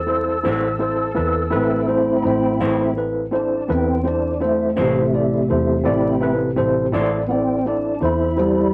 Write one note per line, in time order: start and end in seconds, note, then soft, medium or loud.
0.00 0.41 E2 medium
0.00 1.87 A4 medium
0.06 0.35 C4 soft
0.06 0.35 E4 soft
0.06 0.35 A4 soft
0.06 0.36 C5 medium
0.43 1.13 A1 medium
0.43 0.68 A2 soft
0.43 0.67 E3 medium
0.43 0.71 C4 soft
0.43 0.67 C4 medium
0.43 0.71 E4 soft
0.43 0.67 E4 medium
0.43 0.72 A4 soft
0.43 0.72 C5 medium
0.79 1.07 C4 medium
0.79 1.07 E4 soft
0.79 1.08 A4 soft
0.79 1.08 C5 medium
1.14 1.50 E2 medium
1.14 1.43 C4 medium
1.14 1.43 E4 medium
1.14 1.43 A4 medium
1.14 1.44 B4 medium
1.50 2.21 A1 medium
1.50 2.59 A3 soft
1.50 1.79 C4 medium
1.50 1.79 E4 medium
1.50 1.79 A4 medium
1.50 1.80 B4 medium
1.55 2.60 C4 soft
1.55 2.26 E4 medium
1.87 2.15 C4 medium
1.87 2.16 E4 medium
1.87 2.16 A4 medium
1.87 2.16 C5 medium
2.22 2.58 A1 medium
2.22 2.52 C4 soft
2.22 2.27 D#4 medium
2.22 2.52 E4 soft
2.22 2.52 A4 soft
2.22 2.52 C5 medium
2.27 2.60 E4 medium
2.60 3.66 A1 medium
2.60 2.84 A2 soft
2.60 2.84 E3 soft
2.60 2.94 A3 soft
2.60 2.88 C4 medium
2.60 2.94 C4 soft
2.60 2.83 C4 medium
2.60 2.88 E4 medium
2.60 2.83 E4 medium
2.60 2.94 E4 soft
2.60 2.88 A4 medium
2.60 2.89 C5 medium
2.96 3.24 C4 soft
2.96 3.24 E4 soft
2.96 3.25 A4 soft
2.96 3.25 B4 medium
3.31 3.60 C4 medium
3.31 3.60 E4 medium
3.31 3.60 A4 soft
3.31 3.61 C5 medium
3.36 3.70 D4 medium
3.68 4.74 E2 medium
3.68 3.96 C4 medium
3.68 3.96 E4 medium
3.68 3.97 A4 medium
3.68 3.97 B4 medium
3.72 4.06 C4 medium
4.04 4.32 C4 soft
4.04 4.32 E4 soft
4.04 4.33 A4 soft
4.04 4.33 C5 medium
4.08 4.42 D4 medium
4.40 4.68 C4 medium
4.40 4.68 E4 soft
4.40 4.69 A4 medium
4.40 4.69 C5 medium
4.44 4.78 A3 medium
4.76 5.46 A1 medium
4.76 5.00 A2 soft
4.76 5.00 E3 medium
4.76 5.04 C4 medium
4.76 4.99 C4 medium
4.76 5.04 E4 soft
4.76 4.99 E4 medium
4.76 5.05 A4 medium
4.76 5.05 C5 medium
4.80 6.92 C3 medium
4.80 5.84 A3 medium
5.13 5.40 C4 soft
5.13 5.41 E4 soft
5.13 5.41 A4 soft
5.13 5.41 D5 soft
5.49 5.84 E2 medium
5.49 5.76 C4 soft
5.49 5.77 E4 soft
5.49 5.77 A4 soft
5.49 5.77 C5 medium
5.84 6.54 A1 medium
5.84 6.34 A3 medium
5.84 6.12 C4 medium
5.84 6.34 C4 soft
5.84 6.13 E4 medium
5.84 6.35 E4 medium
5.84 6.13 A4 medium
5.84 6.13 D5 medium
6.21 6.49 C4 medium
6.21 6.49 E4 medium
6.21 6.49 A4 medium
6.21 6.50 B4 medium
6.56 6.91 A1 medium
6.56 6.84 C4 medium
6.56 6.85 E4 medium
6.56 6.85 A4 medium
6.56 6.85 C5 medium
6.92 7.99 A1 medium
6.92 7.17 A2 medium
6.92 7.17 E3 medium
6.92 7.20 C4 medium
6.92 7.16 C4 medium
6.92 7.20 E4 medium
6.92 7.16 E4 medium
6.92 7.21 A4 medium
6.92 7.21 D5 medium
7.27 7.31 B3 medium
7.27 7.57 C4 soft
7.27 7.57 E4 soft
7.27 7.57 A4 soft
7.27 7.58 D5 medium
7.31 7.66 C4 medium
7.65 7.93 C4 soft
7.65 8.02 D4 medium
7.65 7.93 E4 soft
7.65 7.93 A4 soft
7.65 7.94 D5 soft
8.01 8.74 E2 medium
8.01 8.29 C4 soft
8.01 8.29 E4 soft
8.01 8.29 A4 soft
8.01 8.30 C5 medium
8.05 8.39 E4 medium
8.36 8.74 G3 medium
8.36 8.64 C4 soft
8.36 8.65 E4 soft
8.36 8.74 E4 medium
8.36 8.65 A4 soft
8.36 8.65 C5 soft